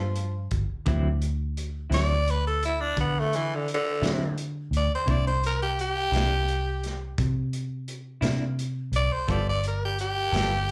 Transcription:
Already playing: G2 F3
0.16 closed hi-hat
0.51 G1, kick, closed hi-hat
0.86 D2 D3 F#3 C4 E4, kick, closed hi-hat
1.22 closed hi-hat
1.57 closed hi-hat
1.90 D2 D3 F#3 C4 E4 D5, closed hi-hat
1.95 snare
2.28 B4, closed hi-hat
2.47 A4
2.63 E4, closed hi-hat
2.80 D4
2.97 D3 B3, kick, closed hi-hat
3.19 A3
3.33 E3, closed hi-hat
3.55 D3
3.68 closed hi-hat
3.74 D3
4.02 D3 F#3 C4 E4, closed hi-hat
4.06 snare
4.38 closed hi-hat
4.71 D2, closed hi-hat
4.76 D5
4.95 C5
5.06 C2 C3 A#3 D4 E4, kick, closed hi-hat
5.11 D5
5.27 C5
5.44 A#4, closed hi-hat
5.62 G4
5.79 G4, closed hi-hat
6.11 C2 C3 A#3 D4 E4, closed hi-hat
6.16 snare
6.48 closed hi-hat
6.83 snare, closed hi-hat
7.18 C3, kick, closed hi-hat
7.53 closed hi-hat
7.88 closed hi-hat
8.21 C3 A#3 D4 E4, snare, closed hi-hat
8.59 closed hi-hat
8.92 C2 D5, closed hi-hat
9.12 C5
9.28 G1 G3 B3 F4 A4 D5, kick, closed hi-hat
9.49 D5
9.64 A#4, closed hi-hat
9.84 G4
9.99 G4, closed hi-hat
10.32 G1 G3 B3 F4 A4, closed hi-hat
10.36 snare

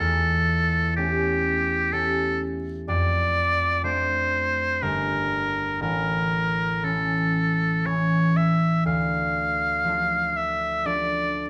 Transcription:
Already playing: A3
0.00 E2 A4
0.96 A3 C#4 G4
1.92 A3 C#4 G4 A4
2.88 F2 D5
3.83 A3 D4 F4 C5
4.82 G1 G3 D4 A#4
5.80 A1 A#4
6.83 E3 C#4 A4
7.85 E3 C#4 A4 C#5
8.37 E5
8.85 D2 F5
9.84 F3 D4
9.90 A4
10.37 E5
10.85 F3 D4 A4 D5

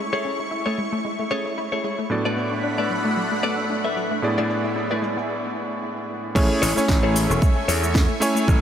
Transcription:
Already playing: A3 C#4 E4 C#5 G#5 C#6
0.13 A3 G#4 A4 C#5
0.25 C#4, cabasa
0.40 E4, cabasa
0.51 E4, cabasa
0.66 A3 G#4 A4 C#5
0.78 G#3, cabasa
0.93 A3, muted clean electric guitar stroke, cabasa
1.05 G#3, cabasa
1.19 A3
1.31 C#4 G#4 A4 C#5, cabasa
1.46 E4, cabasa
1.58 E4, cabasa
1.72 A3 G#4 A4 C#5
1.84 G#3, cabasa
1.99 A3, cabasa
2.10 A2 F#3 A3 B3 D4 F#4 A4 D5 F#5 B5, cabasa
2.25 A3 A4 B4 D5
2.37 B3, cabasa
2.52 D4, cabasa
2.64 D4, cabasa
2.78 A3 A4 B4 D5
2.90 F#3, cabasa
3.05 A3, muted clean electric guitar stroke, cabasa
3.17 F#3
3.32 A3
3.43 B3 A4 B4 D5, cabasa
3.58 D4, cabasa
3.70 D4
3.84 A3 A4 B4 E5
3.97 F#3, cabasa
4.11 A3, cabasa
4.22 A2 G#3 B3 D4 E4 G#4 D5 E5, cabasa
4.38 A3 B3 E4 G#4 D5
4.50 D4, cabasa
4.64 E4, cabasa
4.76 E4, cabasa
4.90 A3 B3 E4 G#4 D5
5.02 G#3, cabasa
5.17 B3, muted clean electric guitar stroke, cabasa
6.35 A1 G#3 A3 C#4 E4 G#4 C#5 E5 G#5 C#6, kick, crash, cabasa
6.50 A3
6.62 A1 C#4 E4 G#4 A4 C#5, open hi-hat, cabasa
6.76 A3 C#4 E4 C#5 G#5, snare, cabasa
6.88 A1 E4, kick, snare, cabasa
7.03 A3 E4 G#4 A4 C#5
7.15 G#3, open hi-hat, cabasa
7.30 E1 A3, cross-stick, cabasa
7.41 G#3, kick, cabasa
7.56 A3
7.68 E2 C#4 E4 G#4 A4 C#5, open hi-hat, cabasa
7.82 E4, cabasa
7.94 E4, kick, snare, cabasa
8.09 A3
8.20 G#3 A3 C#4 E4 C#5 G#5, muted clean electric guitar stroke, cross-stick, open hi-hat, cabasa
8.35 A3, muted clean electric guitar stroke, cabasa
8.47 A1 G#3, kick, cabasa

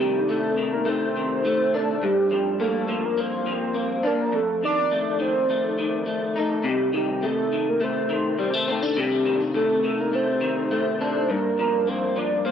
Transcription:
Already playing: C3 A3 D4
0.00 D#3 G4
0.29 A3 A4
0.57 D#3
0.73 A#4
0.85 A3 C5
1.17 D#3
1.45 A3
1.74 D4 A4
2.03 G2 G4
2.31 F3 G4
2.60 A#3 A4
2.88 F3
3.05 A#4
3.17 A#3 C5
3.46 F3
3.74 A#3
4.03 D4 A#4
4.32 F2 A4
4.63 D#3 D5
4.92 A3
5.20 D#3 C5
5.50 A3
5.79 D#3
6.06 A3
6.36 D#4 A4
6.64 C3
6.69 G4
6.93 D#3 G4
7.23 A3 A4
7.53 D#3
7.69 A#4
7.80 A3 C5
8.10 D#3
8.39 G3
8.53 A3
8.68 C4 A4
8.83 D4
8.97 C3 G4
9.26 D#3 G4
9.55 A3 A4
9.84 D#3
10.00 A#4
10.13 A3 C5
10.41 D#3
10.71 A3
11.01 D4 C5
11.30 G2 A#4
11.59 F3 A#4
11.87 A#3 C5
12.16 F3 D5
12.45 A#3 C5

